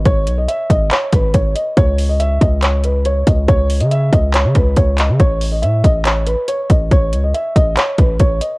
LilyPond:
<<
  \new Staff \with { instrumentName = "Grand piano" } { \time 4/4 \key cis \minor \tempo 4 = 140 cis''8. dis''16 e''8 dis''8 cis''8 b'8 cis''8 dis''8 | cis''8. dis''16 e''8 dis''8 cis''8 b'8 cis''8 dis''8 | cis''8. dis''16 e''8 dis''8 cis''8 b'8 cis''8 dis''8 | cis''8. dis''16 e''8 dis''8 cis''8 b'8 cis''8 dis''8 |
cis''8. dis''16 e''8 dis''8 cis''8 b'8 cis''8 dis''8 | }
  \new Staff \with { instrumentName = "808-style bass" } { \clef bass \time 4/4 \key cis \minor gis,,8 b,,8 r8 gis,,8 r8 gis,,8 gis,,8 r8 | cis,4. cis,2 cis,8 | cis,8. cis8. cis,8. cis16 cis,8 cis,8. cis16 | a,,4 a,8 a,,4~ a,,16 r8. a,,8 |
a,,8 cis,8 r8 a,,8 r8 a,,8 a,,8 r8 | }
  \new DrumStaff \with { instrumentName = "Drums" } \drummode { \time 4/4 <hh bd>8 hh8 hh8 <hh bd>8 <hc hh>8 <hh bd>8 <hh bd>8 hh8 | <hh bd>8 hho8 hh8 <hh bd>8 <hc hh>8 hh8 hh8 <hh bd>8 | <hh bd>8 <hh hho>16 hh16 hh8 <hh bd>8 <hc hh>8 <hh bd>8 <hh bd>8 <hc hh>8 | <hh bd>8 hho8 hh8 <hh bd>8 <hc hh>8 hh8 hh8 <hh bd>8 |
<hh bd>8 hh8 hh8 <hh bd>8 <hc hh>8 <hh bd>8 <hh bd>8 hh8 | }
>>